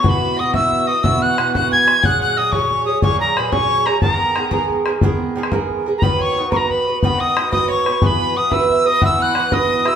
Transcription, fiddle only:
X:1
M:12/8
L:1/8
Q:3/8=120
K:Elyd
V:1 name="Fiddle"
B2 d e2 d e f2 f g2 | f f d c3 c A B c2 A | A3 A z8 | B c2 A B2 B d2 d c2 |
B3 e e d e f2 d2 e |]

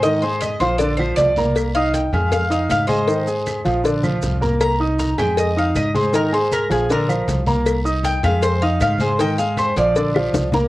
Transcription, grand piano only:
X:1
M:4/4
L:1/8
Q:1/4=157
K:Ablyd
V:1 name="Grand piano"
[E,Ee] [A,Aa]2 [F,Ff] [D,Dd] [F,Ff]2 [B,Bb]- | [B,Bb] [Eee']2 [A,Aa]2 [Eee']2 [A,Aa] | [E,Ee] [A,Aa]2 [F,Ff] [D,Dd] [F,Ff]2 [B,Bb]- | [B,Bb] [Eee']2 [A,Aa]2 [Eee']2 [A,Aa] |
[E,Ee] [A,Aa]2 [F,Ff] [D,Dd] [F,Ff]2 [B,Bb]- | [B,Bb] [Eee']2 [A,Aa]2 [Eee']2 [A,Aa] | [E,Ee] [A,Aa]2 [F,Ff] [D,Dd] [F,Ff]2 [B,Bb] |]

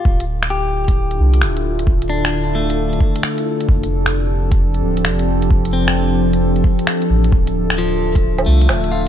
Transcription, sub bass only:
X:1
M:4/4
L:1/8
Q:"Swing 16ths" 1/4=132
K:Dm
V:1 name="Sub bass" clef=bass
D,,,4- D,,, C,, D,,,2 | D,,,4- D,,, z3 | F,,,4- F,,, D,,, F,,,2 | F,,,4- F,,, z2 A,,, |
D,,,4- D,,, C,, D,,,2 |]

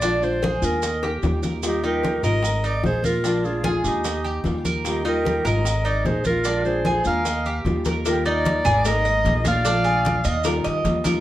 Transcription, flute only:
X:1
M:4/4
L:1/8
Q:1/4=150
K:Eb
V:1 name="Flute"
z8 | E G2 B2 B A F- | F F2 E3 z2 | E G2 B2 B A F- |
F A2 B3 z2 | G B3 B3 d- | d4- d z3 |]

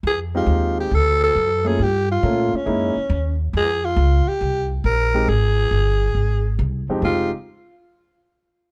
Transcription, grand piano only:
X:1
M:4/4
L:1/8
Q:"Swing" 1/4=138
K:Fm
V:1 name="Grand piano"
z [A,CEG]3 z3 [=A,B,DF] | z2 [=A,B,DF] z [_A,B,E_F] z3 | z6 z [A,CEG] | z6 z [F,,A,CEG] |
[A,CEG] z6 z |]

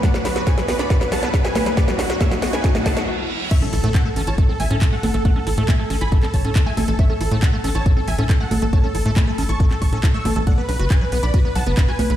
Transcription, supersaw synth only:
X:1
M:4/4
L:1/16
Q:1/4=138
K:A
V:1 name="Supersaw synth"
[df] B B B [Bg] B B [db] B B [fa] B B [Bg] B B | [Bd] F F F [ce] F F [Bg] F F [fa] F z4 | [ce] A A A [Af] A A [ca] A A [eg] A A [Af] A A | [Af] A A A [eg] A A [gb] A A [ca] A A [eg] A A |
[ce] A A A [Af] A A [ca] A A [eg] A A [Af] A A | [ca] A A A [gb] A A [ac'] A A [ac'] A A [c'e'] A A | [df] B B B [Bg] B B [db] B B [fa] B B [Bg] B B |]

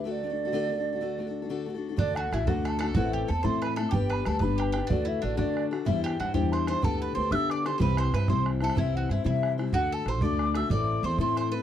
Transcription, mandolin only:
X:1
M:12/8
L:1/16
Q:3/8=124
K:Dmix
V:1 name="Mandolin"
z24 | D2 F2 E2 F2 A2 A2 F2 G2 A2 c2 B2 A2 | G2 B2 A2 B2 G2 G2 D2 E2 D2 D6 | E2 G2 F2 G2 c2 c2 A2 B2 c2 e2 d2 c3/2 c/2 |
B2 c2 B2 c2 z2 A2 E2 F2 E2 E6 | F2 A2 c2 d4 e2 d4 c2 c2 c2 B2 |]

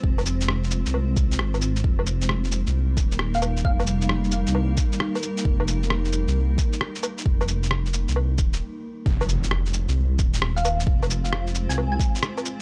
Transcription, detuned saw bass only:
X:1
M:4/4
L:1/16
Q:"Swing 16ths" 1/4=133
K:Fm
V:1 name="Detuned saw bass" clef=bass
F,,,6- F,,, C,,3 C,,2 A,,,4 | F,,,6- F,,, C,,3 E,,,6 | F,,,6- F,,, C,,3 z6 | F,,,6- F,,, C,,3 z6 |
F,,,6- F,,, C,,3 E,,,2 z4 | F,,,6- F,,, C,,3 E,,,6 | F,,,6- F,,, C,,3 z6 |]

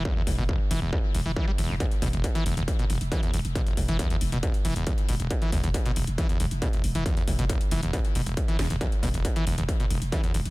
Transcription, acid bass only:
X:1
M:4/4
L:1/16
Q:1/4=137
K:Bphr
V:1 name="Acid bass" clef=bass
E,, E,, z B,, E,,, z E, E,, E,, z E,, E, E, G, E,, G,, | E,, z B,, E,,, z E, E,, E,, z B,, E,,, z E, E,, E,, z | B,, E,,, z E, E,, E,, z B,, E,,, z E, E,, E,, z B,, E,,, | z E, E,, E,, z B,, E,,, z E, E,, E,, z B,, E,,, z E, |
E,, E,, z B,, E,,, z E, E,, E,, z B,, E,,, z E, E,, E,, | E,, z B,, E,,, z E, E,, E,, z B,, E,,, z E, E,, E,, z |]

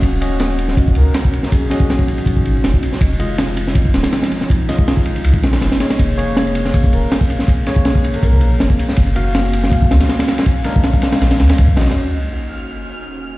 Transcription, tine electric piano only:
X:1
M:4/4
L:1/8
Q:1/4=161
K:Ebdor
V:1 name="Tine electric piano"
[DGe] [DGe]6- [DGe]- | [DGe] [DGe]6- [DGe] | z [A,Fe]6- [A,Fe]- | [A,Fe] [A,Fe]6 [B,Ad]- |
[B,Ad] [B,Ad]6- [B,Ad]- | [B,Ad] [B,Ad]6- [B,Ad] | z [B,Gf]6- [B,Gf] | z [A,=DB]6 [_DGe]- |
[DGe] z6 z |]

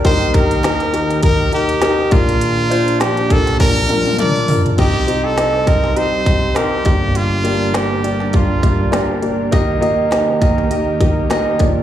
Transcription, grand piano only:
X:1
M:4/4
L:1/8
Q:"Swing 16ths" 1/4=101
K:Eblyd
V:1 name="Grand piano"
[EGB] [EGB] [EGB] [EGB] [EGB] [EGB] [EGB] [DFB]- | [DFB] [DFc] [DFG] [DFB] [DFB] [DFB] [DFB] [DFB] | [CEGe] [CEGe] [CEGe] [CEGe] [CEGe] [CEGe] [CEGB] [B,DGd]- | [B,DGd] [B,DGd] [B,DGd] [B,DGd] [B,DGd] [B,DGd] [B,DGd] [B,DGd] |
[B,EGe] [B,EGe] [B,EGe] [B,EGe] [B,EGe] [B,EGe] [B,EGe] [B,DFd] |]
V:2 name="Grand piano" clef=bass
[E,,E,]6- [E,,E,] [B,,,B,,]- | [B,,,B,,]6- [B,,,B,,] z | [C,,C,]6- [C,,C,] [G,,,G,,]- | [G,,,G,,]6- [G,,,G,,] z |
[E,,E,]6- [E,,E,] [B,,,B,,] |]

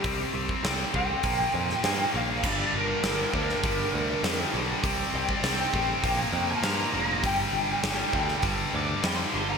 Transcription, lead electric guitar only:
X:1
M:4/4
L:1/16
Q:1/4=100
K:Gm
V:1 name="Lead electric guitar"
G2 z4 g8 f2 | d2 B12 z2 | z2 g d2 g6 b4- b | g8 z2 d'2 c' z c' b |]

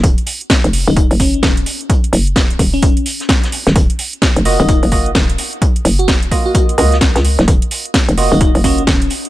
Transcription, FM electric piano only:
X:1
M:4/4
L:1/16
Q:"Swing 16ths" 1/4=129
K:Ebm
V:1 name="FM electric piano"
z6 z E z2 D4 z2 | z6 z D3 z6 | z6 z E E z6 z | z3 G z3 G G z6 z |
z6 z E E z D4 z2 |]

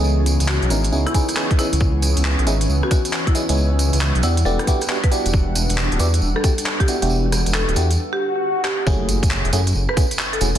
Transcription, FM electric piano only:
X:1
M:4/4
L:1/16
Q:"Swing 16ths" 1/4=136
K:E
V:1 name="FM electric piano"
[B,CDEG]6 [B,CDE^A] z [B,CDEG] z [B,CDEG] z [B,CDEG]2 [B,CDEG] z | z6 [B,CDEG] z3 [B,CDEG] z3 [B,CDEG] [B,CDEG]- | [B,CDEG]6 [B,=DEF=G] z [B,DEFG] z [B,DEFG] z [B,DEFG] z [B,DEFG]2- | [B,=DEF=G]6 [B,DEFG] z3 [B,DEFG] z3 [B,DEFG] [B,DEFG]- |
[B,=DEF=G]6 [B,DEFG] z8 z | [A,CEFG]6 [A,CEFG] z3 [A,CEFG] z3 [A,CEFG] z |]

